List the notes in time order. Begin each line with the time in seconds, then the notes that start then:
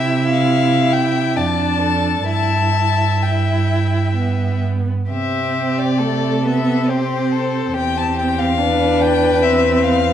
Already playing: C3 E4 E5 G5
0.29 F5
0.93 G5
1.36 F2 D4 D5 A5
1.82 A4
2.28 G2 E4 E5 A5
3.23 E4 G5
4.17 B3
5.10 C3 C4 G4 E5
5.78 D5
5.99 A3 A4
6.45 B3 E5
6.89 C4 G4 C5
7.31 A4
7.74 E2 C4 G4 G5
7.98 A5
8.18 G5
8.38 F5
8.58 D4 B4
9.01 G5
9.42 C4 E5
9.84 F5